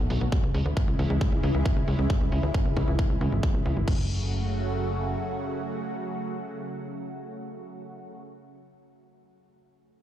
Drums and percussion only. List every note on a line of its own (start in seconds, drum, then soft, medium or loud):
0.10 open hi-hat loud
0.21 closed hi-hat soft
0.32 kick loud
0.32 closed hi-hat medium
0.43 closed hi-hat soft
0.55 open hi-hat loud
0.66 closed hi-hat soft
0.77 kick loud
0.77 closed hi-hat medium
0.88 closed hi-hat soft
0.99 open hi-hat medium
1.10 closed hi-hat soft
1.21 kick loud
1.21 closed hi-hat medium
1.32 closed hi-hat soft
1.43 open hi-hat medium
1.54 closed hi-hat soft
1.65 kick loud
1.65 closed hi-hat medium
1.77 closed hi-hat soft
1.88 open hi-hat loud
1.99 closed hi-hat soft
2.10 kick loud
2.10 closed hi-hat medium
2.21 closed hi-hat soft
2.32 open hi-hat loud
2.43 closed hi-hat soft
2.54 kick loud
2.54 closed hi-hat loud
2.65 closed hi-hat soft
2.76 kick medium
2.76 open hi-hat loud
2.88 closed hi-hat soft
2.99 kick loud
2.99 closed hi-hat medium
3.10 closed hi-hat soft
3.21 open hi-hat loud
3.32 closed hi-hat soft
3.43 kick loud
3.43 closed hi-hat medium
3.54 closed hi-hat soft
3.65 open hi-hat loud
3.77 closed hi-hat soft
3.88 kick loud
3.88 crash medium